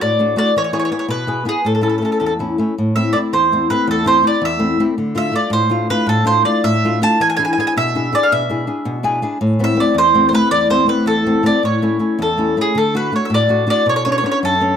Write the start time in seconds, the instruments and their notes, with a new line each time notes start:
Already playing: nylon-string guitar A3 D4 F#4
0.01 nylon-string guitar A2, mandolin D5
0.19 nylon-string guitar A3 D4 F#4
0.36 nylon-string guitar A3 D4 F#4, mandolin D5
0.56 nylon-string guitar E3, mandolin C#5
0.64 mandolin C#5
0.73 nylon-string guitar B3 E4 G#4, mandolin C#5
0.79 mandolin C#5
0.85 mandolin C#5
0.91 nylon-string guitar B3 E4 G#4, mandolin C#5
0.99 mandolin C#5
1.08 nylon-string guitar B2, mandolin B4
1.27 nylon-string guitar B3 E4 G#4
1.45 nylon-string guitar B3 E4 G#4, mandolin G#4
1.65 nylon-string guitar A2, mandolin A4
1.75 mandolin A4
1.81 nylon-string guitar A3 C#4 E4, mandolin A4
1.89 mandolin A4
1.98 nylon-string guitar A3 C#4, mandolin A4
2.02 nylon-string guitar E4, mandolin A4
2.12 mandolin A4
2.20 nylon-string guitar E2, mandolin A4
2.26 mandolin A4
2.39 nylon-string guitar A3 C#4 E4
2.58 nylon-string guitar A3 C#4 E4
2.78 nylon-string guitar A2
2.96 nylon-string guitar A3 C4 E4, mandolin E5
3.13 nylon-string guitar A3 C4 E4, mandolin D5
3.33 nylon-string guitar E2, mandolin C5
3.52 nylon-string guitar A3 C4 E4
3.70 nylon-string guitar A3 C4 E4, mandolin B4
3.87 nylon-string guitar E2, mandolin A4
4.04 nylon-string guitar A3 C4 E4, mandolin C5
4.23 nylon-string guitar A3 C4 E4
4.27 mandolin D5
4.41 nylon-string guitar E2, mandolin E5
4.59 nylon-string guitar A3 C4 E4
4.80 nylon-string guitar A3 C4 E4
4.98 nylon-string guitar D3
5.15 nylon-string guitar A3 D4 F4, mandolin E5
5.32 nylon-string guitar A3 D4 F4, mandolin D5
5.50 nylon-string guitar A2, mandolin C5
5.69 nylon-string guitar A3 D4 F4
5.90 nylon-string guitar A3 D4 F4, mandolin B4
6.07 nylon-string guitar A2, mandolin A4
6.25 nylon-string guitar A3 D4 F4, mandolin C5
6.45 nylon-string guitar A3 D4 F4, mandolin D5
6.64 nylon-string guitar A2, mandolin E5
6.84 nylon-string guitar A3 D4 F4
7.01 nylon-string guitar A3 D4 F4, mandolin A5
7.20 nylon-string guitar E3, mandolin G#5
7.30 mandolin G#5
7.37 nylon-string guitar D4 E4 G#4, mandolin G#5
7.45 mandolin G#5
7.53 mandolin G#5
7.58 nylon-string guitar D4 E4 G#4, mandolin G#5
7.67 mandolin G#5
7.77 nylon-string guitar B2, mandolin E5
7.95 nylon-string guitar D4 E4 G#4
8.12 nylon-string guitar D4 E4 G#4, mandolin D5
8.23 mandolin F5
8.32 nylon-string guitar B2, mandolin E5
8.50 nylon-string guitar D4 E4 G#4
8.67 nylon-string guitar D4 E4 G#4
8.85 nylon-string guitar B2
9.03 nylon-string guitar D4 E4 G#4 G#5
9.22 nylon-string guitar D4 E4 G#4
9.41 nylon-string guitar A2
9.59 nylon-string guitar A3 B3 C4
9.64 mandolin E5
9.75 nylon-string guitar A3 B3 C4
9.80 mandolin D5
9.94 nylon-string guitar E2, mandolin C5
10.14 nylon-string guitar A3 B3 C4
10.29 mandolin C5
10.33 nylon-string guitar A3 B3 C4, mandolin B4
10.51 nylon-string guitar E2, mandolin D5
10.70 nylon-string guitar A3 B3 C4, mandolin C5
10.86 nylon-string guitar A3 B3 C4, mandolin B4
11.06 nylon-string guitar E2, mandolin A4
11.26 nylon-string guitar A3 B3 C4
11.43 nylon-string guitar A3 B3 C4, mandolin D5
11.63 nylon-string guitar A2, mandolin C#5
11.82 nylon-string guitar A3 C#4 E4
11.99 nylon-string guitar A3 C#4 E4
12.19 nylon-string guitar E2, mandolin A4
12.37 nylon-string guitar A3 C#4 E4
12.57 nylon-string guitar A3 C#4 E4
12.61 mandolin G#4
12.75 nylon-string guitar D3, mandolin A4
12.94 nylon-string guitar A3 D4 F#4, mandolin B4
13.12 nylon-string guitar A3 D4 F#4, mandolin C#5
13.25 mandolin E5
13.30 nylon-string guitar A2
13.34 mandolin D5
13.49 nylon-string guitar A3 D4 F#4
13.67 nylon-string guitar A3 D4 F#4, mandolin D5
13.86 nylon-string guitar B2, mandolin C#5
13.96 mandolin C#5
14.05 nylon-string guitar B3 C#4 D4, mandolin C#5
14.12 mandolin C#5
14.18 mandolin C#5
14.23 nylon-string guitar B3 C#4 D4, mandolin C#5
14.31 mandolin C#5
14.43 nylon-string guitar F#2, mandolin A4
14.61 nylon-string guitar B3 C#4 D4